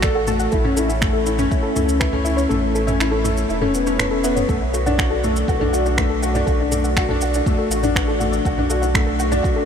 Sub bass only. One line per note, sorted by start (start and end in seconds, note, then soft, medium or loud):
0.00 0.48 A1 medium
0.52 1.47 A1 medium
1.76 2.46 C#2 medium
2.50 3.45 A1 medium
3.49 3.98 E1 medium
3.99 4.44 E1 medium
4.49 5.43 B1 medium
5.48 6.43 B1 loud
6.47 7.41 B1 medium
7.70 8.40 A1 medium
8.45 9.40 B1 loud